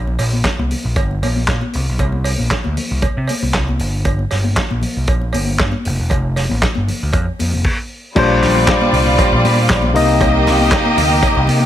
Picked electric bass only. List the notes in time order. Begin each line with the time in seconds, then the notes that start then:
Already playing: A#1
0.19 A#1
0.59 C2
0.85 A#1
0.96 G1
1.22 A#1
1.48 A#2
1.75 C2
1.89 B1
1.99 C2
2.40 A#1
2.65 D2
2.91 C2
3.03 muted picked electric bass stroke
3.17 C3
3.43 C2
3.55 C2
3.80 G1
4.32 G1
4.71 A#1
4.97 C2
5.08 A#1
5.35 G1
5.60 G2
5.86 F1
6.00 E1
6.11 F1
6.51 A1
6.77 G1
7.03 D2
7.14 F2
7.41 F2
7.54 F1
8.17 A#1
8.42 A#1
8.93 C2
9.32 A#1
9.45 A#2
9.70 A#1
9.95 C2
10.21 C2
10.47 C2
10.98 D2
11.37 C2
11.48 C3